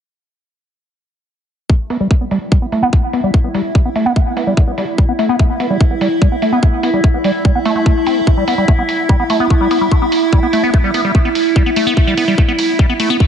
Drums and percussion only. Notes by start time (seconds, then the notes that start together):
1.70 kick
1.90 open hi-hat
2.11 kick
2.31 open hi-hat
2.52 kick
2.72 open hi-hat
2.93 kick
3.13 open hi-hat
3.34 kick
3.54 open hi-hat
3.75 kick
3.96 open hi-hat
4.16 kick
4.37 open hi-hat
4.57 kick
4.78 open hi-hat
4.98 kick
5.19 open hi-hat
5.39 kick
5.60 open hi-hat
5.81 kick
6.01 open hi-hat
6.22 kick
6.42 open hi-hat
6.63 kick
6.83 open hi-hat
7.04 kick
7.24 open hi-hat
7.45 kick
7.65 open hi-hat
7.86 kick
8.07 open hi-hat
8.27 kick
8.48 open hi-hat
8.68 kick
8.89 open hi-hat
9.09 kick
9.30 open hi-hat
9.50 kick
9.71 open hi-hat
9.91 kick
10.12 open hi-hat
10.33 kick
10.53 open hi-hat
10.74 kick
10.94 open hi-hat
11.15 kick
11.35 open hi-hat
11.56 kick
11.76 open hi-hat
11.97 kick
12.18 open hi-hat
12.38 kick
12.59 open hi-hat
12.79 kick
13.00 open hi-hat
13.20 kick